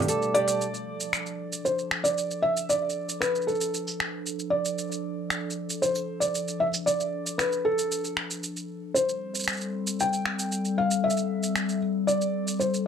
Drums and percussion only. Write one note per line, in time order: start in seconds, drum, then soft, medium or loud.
0.02 open hi-hat soft
0.08 open hi-hat medium
0.08 shaker medium
0.22 shaker soft
0.35 open hi-hat soft
0.48 open hi-hat medium
0.48 shaker medium
0.61 shaker soft
0.74 shaker soft
1.00 shaker medium
1.13 finger snap medium
1.13 shaker soft
1.26 shaker soft
1.53 shaker medium
1.66 shaker soft
1.79 shaker soft
1.91 finger snap medium
2.05 shaker medium
2.18 shaker soft
2.31 shaker soft
2.57 shaker soft
2.70 shaker soft
2.90 shaker soft
3.09 shaker medium
3.22 finger snap medium
3.22 shaker soft
3.35 shaker soft
3.42 shaker soft
3.48 shaker soft
3.55 shaker soft
3.61 shaker medium
3.74 shaker soft
3.88 shaker soft
4.00 finger snap medium
4.26 shaker soft
4.39 shaker soft
4.65 shaker medium
4.78 shaker soft
4.92 shaker soft
5.30 finger snap medium
5.30 shaker soft
5.50 shaker soft
5.70 shaker medium
5.83 shaker soft
5.95 shaker soft
6.22 shaker medium
6.35 shaker soft
6.48 shaker soft
6.74 shaker medium
6.87 shaker soft
7.00 shaker soft
7.27 shaker medium
7.39 finger snap medium
7.39 shaker soft
7.52 shaker soft
7.79 shaker medium
7.92 shaker soft
8.04 shaker soft
8.17 finger snap medium
8.31 shaker medium
8.43 shaker soft
8.57 shaker soft
8.96 shaker medium
9.09 shaker soft
9.35 shaker medium
9.39 shaker soft
9.44 shaker soft
9.48 finger snap medium
9.48 shaker soft
9.53 shaker soft
9.57 shaker soft
9.61 shaker soft
9.87 shaker medium
10.00 shaker soft
10.13 shaker soft
10.26 finger snap medium
10.39 shaker medium
10.52 shaker soft
10.65 shaker soft
10.91 shaker medium
11.10 shaker soft
11.17 shaker soft
11.43 shaker medium
11.56 finger snap medium
11.56 shaker soft
11.69 shaker soft
12.08 shaker soft
12.21 shaker soft
12.48 shaker medium
12.61 shaker soft
12.74 shaker soft